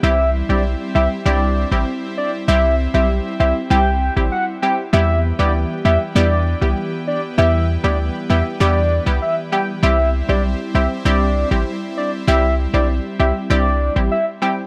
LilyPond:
<<
  \new Staff \with { instrumentName = "Soft synth lead" } { \time 4/4 \key c \lydian \tempo 4 = 98 e''8 r16 d''16 r8 e''16 r16 d''8. r8. d''16 r16 | e''8 r16 e''16 r8 e''16 r16 g''8. r16 fis''16 r16 g''16 r16 | e''8 r16 d''16 r8 e''16 r16 d''8. r8. d''16 r16 | e''8 r16 d''16 r8 e''16 r16 d''8. r16 e''16 r16 g''16 r16 |
e''8 r16 d''16 r8 e''16 r16 d''8. r8. d''16 r16 | e''8 r16 d''16 r8 e''16 r16 d''8. r16 e''16 r16 g''16 r16 | }
  \new Staff \with { instrumentName = "Synth pluck" } { \time 4/4 \key c \lydian <g c' e' g'>16 r8 <g c' e' g'>8. <g c' e' g'>8 <g c' e' g'>16 r8 <g c' e' g'>16 r4 | <g c' e' g'>16 r8 <g c' e' g'>8. <g c' e' g'>8 <g c' e' g'>16 r8 <g c' e' g'>16 r8 <g c' e' g'>16 r16 | <g b e' g'>16 r8 <g b e' g'>8. <g b e' g'>8 <g b e' g'>16 r8 <g b e' g'>16 r4 | <g b e' g'>16 r8 <g b e' g'>8. <g b e' g'>8 <g b e' g'>16 r8 <g b e' g'>16 r8 <g b e' g'>16 r16 |
<g c' e' g'>16 r8 <g c' e' g'>8. <g c' e' g'>8 <g c' e' g'>16 r8 <g c' e' g'>16 r4 | <g c' e' g'>16 r8 <g c' e' g'>8. <g c' e' g'>8 <g c' e' g'>16 r8 <g c' e' g'>16 r8 <g c' e' g'>16 r16 | }
  \new Staff \with { instrumentName = "Analog synth pad" } { \time 4/4 \key c \lydian <g c' e'>1~ | <g c' e'>1 | <e b g'>1~ | <e b g'>1 |
<g c' e'>1~ | <g c' e'>1 | }
  \new Staff \with { instrumentName = "808-style bass" } { \clef bass \time 4/4 \key c \lydian c,8. b,,8 r16 c,16 r16 c,8. a,,16 r4 | c,8. b,,8 r16 c,16 r16 c,8. a,,16 r4 | e,8. d,8 r16 e,16 r16 e,8. c,16 r4 | e,8. d,8 r16 e,16 r16 e,8. c,16 r4 |
c,8. b,,8 r16 c,16 r16 c,8. a,,16 r4 | c,8. b,,8 r16 c,16 r16 c,8. a,,16 r4 | }
>>